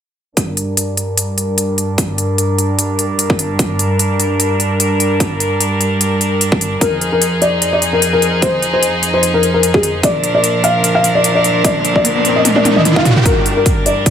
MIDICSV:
0, 0, Header, 1, 5, 480
1, 0, Start_track
1, 0, Tempo, 402685
1, 441, Time_signature, 4, 2, 24, 8
1, 16808, End_track
2, 0, Start_track
2, 0, Title_t, "Felt piano"
2, 0, Program_c, 0, 0
2, 8120, Note_on_c, 0, 70, 92
2, 8405, Note_off_c, 0, 70, 0
2, 8492, Note_on_c, 0, 70, 84
2, 8768, Note_off_c, 0, 70, 0
2, 8841, Note_on_c, 0, 74, 86
2, 9125, Note_off_c, 0, 74, 0
2, 9212, Note_on_c, 0, 74, 81
2, 9394, Note_off_c, 0, 74, 0
2, 9451, Note_on_c, 0, 70, 83
2, 9634, Note_off_c, 0, 70, 0
2, 9691, Note_on_c, 0, 70, 86
2, 9968, Note_off_c, 0, 70, 0
2, 10040, Note_on_c, 0, 72, 88
2, 10325, Note_off_c, 0, 72, 0
2, 10411, Note_on_c, 0, 72, 83
2, 10775, Note_off_c, 0, 72, 0
2, 10891, Note_on_c, 0, 72, 81
2, 11073, Note_off_c, 0, 72, 0
2, 11131, Note_on_c, 0, 70, 83
2, 11314, Note_off_c, 0, 70, 0
2, 11371, Note_on_c, 0, 70, 81
2, 11553, Note_off_c, 0, 70, 0
2, 11612, Note_on_c, 0, 68, 88
2, 11888, Note_off_c, 0, 68, 0
2, 11960, Note_on_c, 0, 74, 93
2, 12244, Note_off_c, 0, 74, 0
2, 12331, Note_on_c, 0, 74, 87
2, 12608, Note_off_c, 0, 74, 0
2, 12680, Note_on_c, 0, 77, 88
2, 12965, Note_off_c, 0, 77, 0
2, 13051, Note_on_c, 0, 77, 84
2, 13234, Note_off_c, 0, 77, 0
2, 13292, Note_on_c, 0, 74, 82
2, 13474, Note_off_c, 0, 74, 0
2, 13532, Note_on_c, 0, 74, 90
2, 13809, Note_off_c, 0, 74, 0
2, 13880, Note_on_c, 0, 74, 90
2, 14165, Note_off_c, 0, 74, 0
2, 14252, Note_on_c, 0, 74, 84
2, 14616, Note_off_c, 0, 74, 0
2, 14732, Note_on_c, 0, 75, 82
2, 14914, Note_off_c, 0, 75, 0
2, 14972, Note_on_c, 0, 74, 82
2, 15154, Note_off_c, 0, 74, 0
2, 15212, Note_on_c, 0, 75, 85
2, 15394, Note_off_c, 0, 75, 0
2, 15451, Note_on_c, 0, 77, 88
2, 15728, Note_off_c, 0, 77, 0
2, 15800, Note_on_c, 0, 70, 93
2, 16084, Note_off_c, 0, 70, 0
2, 16171, Note_on_c, 0, 70, 83
2, 16448, Note_off_c, 0, 70, 0
2, 16520, Note_on_c, 0, 74, 89
2, 16804, Note_off_c, 0, 74, 0
2, 16808, End_track
3, 0, Start_track
3, 0, Title_t, "String section"
3, 0, Program_c, 1, 48
3, 439, Note_on_c, 1, 43, 69
3, 440, Note_on_c, 1, 55, 64
3, 440, Note_on_c, 1, 62, 64
3, 440, Note_on_c, 1, 70, 78
3, 8072, Note_off_c, 1, 43, 0
3, 8073, Note_off_c, 1, 55, 0
3, 8073, Note_off_c, 1, 62, 0
3, 8073, Note_off_c, 1, 70, 0
3, 8120, Note_on_c, 1, 41, 73
3, 8120, Note_on_c, 1, 53, 65
3, 8120, Note_on_c, 1, 63, 66
3, 8120, Note_on_c, 1, 68, 80
3, 11922, Note_off_c, 1, 41, 0
3, 11922, Note_off_c, 1, 63, 0
3, 11922, Note_off_c, 1, 68, 0
3, 11960, Note_on_c, 1, 62, 67
3, 11960, Note_on_c, 1, 70, 81
3, 11961, Note_on_c, 1, 46, 73
3, 15753, Note_off_c, 1, 53, 0
3, 15762, Note_off_c, 1, 46, 0
3, 15762, Note_off_c, 1, 62, 0
3, 15762, Note_off_c, 1, 70, 0
3, 15801, Note_on_c, 1, 43, 73
3, 15801, Note_on_c, 1, 55, 68
3, 15801, Note_on_c, 1, 62, 66
3, 15801, Note_on_c, 1, 70, 80
3, 16808, Note_off_c, 1, 43, 0
3, 16808, Note_off_c, 1, 55, 0
3, 16808, Note_off_c, 1, 62, 0
3, 16808, Note_off_c, 1, 70, 0
3, 16808, End_track
4, 0, Start_track
4, 0, Title_t, "Riser"
4, 0, Program_c, 2, 103
4, 11960, Note_on_c, 2, 60, 74
4, 15801, Note_off_c, 2, 60, 0
4, 15801, Note_on_c, 2, 60, 76
4, 16808, Note_off_c, 2, 60, 0
4, 16808, End_track
5, 0, Start_track
5, 0, Title_t, "Drums"
5, 440, Note_on_c, 9, 36, 106
5, 440, Note_on_c, 9, 42, 73
5, 559, Note_off_c, 9, 36, 0
5, 559, Note_off_c, 9, 42, 0
5, 680, Note_on_c, 9, 42, 50
5, 800, Note_off_c, 9, 42, 0
5, 921, Note_on_c, 9, 42, 74
5, 1040, Note_off_c, 9, 42, 0
5, 1161, Note_on_c, 9, 42, 51
5, 1280, Note_off_c, 9, 42, 0
5, 1401, Note_on_c, 9, 42, 75
5, 1520, Note_off_c, 9, 42, 0
5, 1641, Note_on_c, 9, 42, 49
5, 1760, Note_off_c, 9, 42, 0
5, 1881, Note_on_c, 9, 42, 76
5, 2000, Note_off_c, 9, 42, 0
5, 2121, Note_on_c, 9, 42, 52
5, 2240, Note_off_c, 9, 42, 0
5, 2361, Note_on_c, 9, 36, 113
5, 2361, Note_on_c, 9, 42, 75
5, 2480, Note_off_c, 9, 36, 0
5, 2480, Note_off_c, 9, 42, 0
5, 2601, Note_on_c, 9, 42, 52
5, 2720, Note_off_c, 9, 42, 0
5, 2841, Note_on_c, 9, 42, 73
5, 2960, Note_off_c, 9, 42, 0
5, 3081, Note_on_c, 9, 42, 51
5, 3200, Note_off_c, 9, 42, 0
5, 3321, Note_on_c, 9, 42, 75
5, 3440, Note_off_c, 9, 42, 0
5, 3561, Note_on_c, 9, 42, 50
5, 3681, Note_off_c, 9, 42, 0
5, 3801, Note_on_c, 9, 42, 75
5, 3920, Note_off_c, 9, 42, 0
5, 3932, Note_on_c, 9, 36, 101
5, 4041, Note_on_c, 9, 42, 49
5, 4051, Note_off_c, 9, 36, 0
5, 4160, Note_off_c, 9, 42, 0
5, 4281, Note_on_c, 9, 36, 118
5, 4281, Note_on_c, 9, 42, 74
5, 4400, Note_off_c, 9, 36, 0
5, 4400, Note_off_c, 9, 42, 0
5, 4521, Note_on_c, 9, 42, 50
5, 4640, Note_off_c, 9, 42, 0
5, 4761, Note_on_c, 9, 42, 73
5, 4880, Note_off_c, 9, 42, 0
5, 5001, Note_on_c, 9, 42, 52
5, 5120, Note_off_c, 9, 42, 0
5, 5241, Note_on_c, 9, 42, 75
5, 5360, Note_off_c, 9, 42, 0
5, 5481, Note_on_c, 9, 42, 49
5, 5600, Note_off_c, 9, 42, 0
5, 5721, Note_on_c, 9, 42, 77
5, 5840, Note_off_c, 9, 42, 0
5, 5961, Note_on_c, 9, 42, 50
5, 6080, Note_off_c, 9, 42, 0
5, 6201, Note_on_c, 9, 36, 113
5, 6201, Note_on_c, 9, 42, 73
5, 6320, Note_off_c, 9, 36, 0
5, 6320, Note_off_c, 9, 42, 0
5, 6441, Note_on_c, 9, 42, 48
5, 6560, Note_off_c, 9, 42, 0
5, 6681, Note_on_c, 9, 42, 72
5, 6800, Note_off_c, 9, 42, 0
5, 6921, Note_on_c, 9, 42, 49
5, 7040, Note_off_c, 9, 42, 0
5, 7161, Note_on_c, 9, 42, 73
5, 7280, Note_off_c, 9, 42, 0
5, 7401, Note_on_c, 9, 42, 49
5, 7520, Note_off_c, 9, 42, 0
5, 7641, Note_on_c, 9, 42, 74
5, 7760, Note_off_c, 9, 42, 0
5, 7772, Note_on_c, 9, 36, 99
5, 7881, Note_on_c, 9, 42, 46
5, 7891, Note_off_c, 9, 36, 0
5, 8000, Note_off_c, 9, 42, 0
5, 8121, Note_on_c, 9, 36, 110
5, 8121, Note_on_c, 9, 42, 70
5, 8240, Note_off_c, 9, 36, 0
5, 8240, Note_off_c, 9, 42, 0
5, 8361, Note_on_c, 9, 42, 46
5, 8480, Note_off_c, 9, 42, 0
5, 8601, Note_on_c, 9, 42, 68
5, 8720, Note_off_c, 9, 42, 0
5, 8841, Note_on_c, 9, 42, 47
5, 8960, Note_off_c, 9, 42, 0
5, 9081, Note_on_c, 9, 42, 71
5, 9200, Note_off_c, 9, 42, 0
5, 9321, Note_on_c, 9, 42, 45
5, 9440, Note_off_c, 9, 42, 0
5, 9561, Note_on_c, 9, 42, 71
5, 9680, Note_off_c, 9, 42, 0
5, 9800, Note_on_c, 9, 42, 48
5, 9920, Note_off_c, 9, 42, 0
5, 10040, Note_on_c, 9, 36, 108
5, 10040, Note_on_c, 9, 42, 69
5, 10159, Note_off_c, 9, 42, 0
5, 10160, Note_off_c, 9, 36, 0
5, 10281, Note_on_c, 9, 42, 47
5, 10400, Note_off_c, 9, 42, 0
5, 10520, Note_on_c, 9, 42, 71
5, 10639, Note_off_c, 9, 42, 0
5, 10760, Note_on_c, 9, 42, 48
5, 10879, Note_off_c, 9, 42, 0
5, 11000, Note_on_c, 9, 42, 70
5, 11120, Note_off_c, 9, 42, 0
5, 11240, Note_on_c, 9, 42, 46
5, 11360, Note_off_c, 9, 42, 0
5, 11481, Note_on_c, 9, 42, 71
5, 11600, Note_off_c, 9, 42, 0
5, 11612, Note_on_c, 9, 36, 94
5, 11721, Note_on_c, 9, 42, 47
5, 11731, Note_off_c, 9, 36, 0
5, 11840, Note_off_c, 9, 42, 0
5, 11960, Note_on_c, 9, 36, 106
5, 11961, Note_on_c, 9, 42, 72
5, 12080, Note_off_c, 9, 36, 0
5, 12080, Note_off_c, 9, 42, 0
5, 12201, Note_on_c, 9, 42, 49
5, 12320, Note_off_c, 9, 42, 0
5, 12441, Note_on_c, 9, 42, 72
5, 12560, Note_off_c, 9, 42, 0
5, 12681, Note_on_c, 9, 42, 50
5, 12800, Note_off_c, 9, 42, 0
5, 12920, Note_on_c, 9, 42, 73
5, 13040, Note_off_c, 9, 42, 0
5, 13161, Note_on_c, 9, 42, 47
5, 13280, Note_off_c, 9, 42, 0
5, 13400, Note_on_c, 9, 42, 73
5, 13520, Note_off_c, 9, 42, 0
5, 13641, Note_on_c, 9, 42, 48
5, 13760, Note_off_c, 9, 42, 0
5, 13881, Note_on_c, 9, 36, 110
5, 13881, Note_on_c, 9, 42, 74
5, 14000, Note_off_c, 9, 36, 0
5, 14000, Note_off_c, 9, 42, 0
5, 14120, Note_on_c, 9, 42, 51
5, 14239, Note_off_c, 9, 42, 0
5, 14252, Note_on_c, 9, 36, 56
5, 14361, Note_on_c, 9, 42, 74
5, 14371, Note_off_c, 9, 36, 0
5, 14480, Note_off_c, 9, 42, 0
5, 14601, Note_on_c, 9, 42, 52
5, 14720, Note_off_c, 9, 42, 0
5, 14841, Note_on_c, 9, 42, 76
5, 14841, Note_on_c, 9, 48, 59
5, 14960, Note_off_c, 9, 42, 0
5, 14960, Note_off_c, 9, 48, 0
5, 14972, Note_on_c, 9, 48, 57
5, 15081, Note_off_c, 9, 48, 0
5, 15081, Note_on_c, 9, 42, 51
5, 15081, Note_on_c, 9, 48, 67
5, 15200, Note_off_c, 9, 42, 0
5, 15200, Note_off_c, 9, 48, 0
5, 15212, Note_on_c, 9, 47, 67
5, 15321, Note_off_c, 9, 47, 0
5, 15321, Note_on_c, 9, 42, 78
5, 15321, Note_on_c, 9, 47, 83
5, 15440, Note_off_c, 9, 42, 0
5, 15440, Note_off_c, 9, 47, 0
5, 15452, Note_on_c, 9, 36, 98
5, 15561, Note_off_c, 9, 36, 0
5, 15561, Note_on_c, 9, 36, 54
5, 15561, Note_on_c, 9, 42, 49
5, 15561, Note_on_c, 9, 45, 93
5, 15680, Note_off_c, 9, 36, 0
5, 15680, Note_off_c, 9, 42, 0
5, 15680, Note_off_c, 9, 45, 0
5, 15692, Note_on_c, 9, 45, 81
5, 15801, Note_on_c, 9, 36, 94
5, 15801, Note_on_c, 9, 42, 77
5, 15811, Note_off_c, 9, 45, 0
5, 15920, Note_off_c, 9, 36, 0
5, 15920, Note_off_c, 9, 42, 0
5, 16041, Note_on_c, 9, 42, 53
5, 16160, Note_off_c, 9, 42, 0
5, 16280, Note_on_c, 9, 42, 78
5, 16281, Note_on_c, 9, 36, 90
5, 16400, Note_off_c, 9, 36, 0
5, 16400, Note_off_c, 9, 42, 0
5, 16520, Note_on_c, 9, 42, 54
5, 16639, Note_off_c, 9, 42, 0
5, 16760, Note_on_c, 9, 42, 77
5, 16761, Note_on_c, 9, 36, 92
5, 16808, Note_off_c, 9, 36, 0
5, 16808, Note_off_c, 9, 42, 0
5, 16808, End_track
0, 0, End_of_file